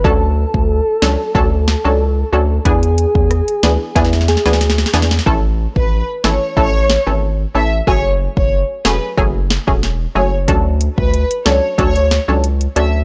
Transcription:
<<
  \new Staff \with { instrumentName = "Violin section" } { \time 4/4 \key a \major \tempo 4 = 92 r1 | r1 | r8. b'8 r16 cis''8 cis''8. r8. e''16 r16 | cis''16 r8 cis''16 r8 b'16 r4. r16 cis''16 r16 |
r8. b'8 r16 cis''8 cis''8. r8. e''16 r16 | }
  \new Staff \with { instrumentName = "Soft synth lead" } { \time 4/4 \key a \major a'1 | gis'2 e'8 gis'4 r8 | r1 | r1 |
r1 | }
  \new Staff \with { instrumentName = "Synth stab" } { \time 4/4 \key a \major <fis cis' d' a'>4. <fis cis' d' a'>8 <fis cis' d' a'>16 r8 <fis cis' d' a'>16 r8 <fis cis' d' a'>16 r16 | <e b d' gis'>4. <e b d' gis'>8 <e b d' gis'>16 r8 <e b d' gis'>16 r8 <e b d' gis'>16 r16 | <e a cis' a'>4. <e a cis' a'>8 <e a cis' a'>16 r8 <e a cis' a'>16 r8 <e a cis' a'>16 r16 | <fis a cis' gis'>4. <fis a cis' gis'>8 <fis a cis' gis'>16 r8 <fis a cis' gis'>16 r8 <fis a cis' gis'>16 r16 |
<fis cis' d' a'>4. <fis cis' d' a'>8 <fis cis' d' a'>16 r8 <fis cis' d' a'>16 r8 <fis cis' d' a'>16 r16 | }
  \new Staff \with { instrumentName = "Analog synth bass" } { \clef bass \time 4/4 \key a \major d,8. d,8 r16 cis,16 r16 d,8. cis,8. d,8 | e,8. e,8 r16 d,16 r16 e,8. d,8. e,8 | a,,8. a,,8 r16 gis,,16 r16 a,,8. gis,,8. a,,8 | fis,,8. fis,,8 r16 e,,16 r16 fis,,8. e,,8. fis,,8 |
d,8. d,8 r16 cis,16 r16 d,8. cis,8. d,8 | }
  \new DrumStaff \with { instrumentName = "Drums" } \drummode { \time 4/4 bd8. bd16 r8 sn8 bd8 sn8 r4 | <hh bd>16 hh16 hh16 bd16 <hh ss>16 hh16 <hh sn>8 <hh bd sn>32 sn32 sn32 sn32 <hh sn>32 sn32 sn32 sn32 <hh sn>32 sn32 sn32 sn32 <hh sn>32 sn32 sn32 sn32 | bd8. bd16 r8 sn8 bd8 sn8 r4 | bd8. bd16 r8 sn8 bd8 sn16 bd16 sn4 |
<hh bd>8 hh16 bd16 hh16 hh16 <hh sn>8 <hh bd>16 hh16 <hh sn>8 hh16 hh16 hh8 | }
>>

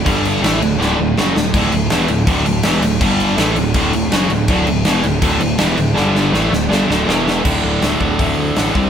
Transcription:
<<
  \new Staff \with { instrumentName = "Distorted electric guitar" } { \clef bass \time 4/4 \key d \major \tempo 4 = 162 <g, d g>4 <a, e a>8 <d, a,>8 <d, a, d>8 <d, a,>8 <fis, cis fis>8 <d, a,>8 | <d, a, d>8 <d, a,>8 <e, b, e>8 <d, a,>8 <d, a, d>8 <d, a,>8 <e, b, e>8 <d, a,>8 | <g, d g>4 <a, e a>8 <d, a,>8 <d, a, d>8 <d, a,>8 <fis, cis fis>8 <d, a,>8 | <d, a, d>8 <d, a,>8 <e, b, e>8 <d, a,>8 <d, a, d>8 <d, a,>8 <e, b, e>8 <d, a,>8 |
<g, d g>4 <a, e a>8 <d, a,>8 <g, d g>8 <d, a, d>8 <e, b, e>4 | <d, a, d>4 <d, a, d>8 <d, a, d>8 <d, a, d>4 <d, a, d>8 <c g c'>8 | }
  \new Staff \with { instrumentName = "Picked electric bass" } { \clef bass \time 4/4 \key d \major g,,4 a,,8 d,,8 d,,8 d,,8 fis,,8 d,,8 | d,,8 d,,8 e,,8 d,,8 d,,8 d,,8 e,,8 d,,8 | g,,4 a,,8 d,,8 d,,8 d,,8 fis,,8 d,,8 | d,,8 d,,8 e,,8 d,,8 d,,8 d,,8 e,,8 d,,8 |
g,,4 a,,8 d,,8 g,,8 d,,8 e,,4 | d,,8 d,,8 d,,8 d,,8 d,,8 d,8 a,,8 c,8 | }
  \new DrumStaff \with { instrumentName = "Drums" } \drummode { \time 4/4 <cymc bd>8 cymc8 <cymc sn>8 cymc8 sn4 sn8 sn8 | <cymc bd>8 cymc8 <cymc sn>8 cymc8 <cymc bd>8 cymc8 <cymc sn>8 cymc8 | <cymc bd>8 cymc8 <cymc sn>8 cymc8 <cymc bd>8 cymc8 <cymc sn>8 cymc8 | <cymc bd>8 cymc8 <cymc sn>8 cymc8 <cymc bd>8 cymc8 <cymc sn>8 cymc8 |
sn8 sn8 sn8 sn8 sn8 sn8 sn8 sn8 | <cymc bd>4 <hho sn>8 bd8 <hho bd>4 <hho sn>8 bd8 | }
>>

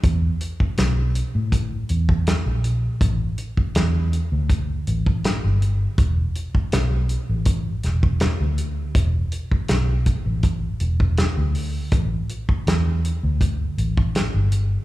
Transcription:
<<
  \new Staff \with { instrumentName = "Fingered electric bass" } { \clef bass \time 4/4 \key e \minor \tempo 4 = 81 e,8 r8 b,,8. a,8. e,8. ais,,8. | a,,8 r8 e,8. d,8. a,,8. g,,8. | e,,8 r8 b,,8. a,,8. e,,8. d,8. | e,,8 r8 b,,8. a,,8. e,,8. d,8. |
a,,8 r8 e,8. d,8. a,,8. g,,8. | }
  \new DrumStaff \with { instrumentName = "Drums" } \drummode { \time 4/4 <hh bd>8 hh16 bd16 <hh sn>8 hh8 <hh bd>8 hh16 bd16 <hh sn>8 hh8 | <hh bd>8 hh16 bd16 <hh sn>8 hh8 <hh bd>8 hh16 bd16 <hh sn>8 hh8 | <hh bd>8 hh16 bd16 <hh sn>8 hh8 <hh bd>8 <hh sn>16 bd16 <hh sn>8 hh8 | <hh bd>8 hh16 bd16 <hh sn>8 <hh bd>8 <hh bd>8 hh16 bd16 <hh sn>8 hho8 |
<hh bd>8 hh16 bd16 <hh sn>8 hh8 <hh bd>8 hh16 bd16 <hh sn>8 hh8 | }
>>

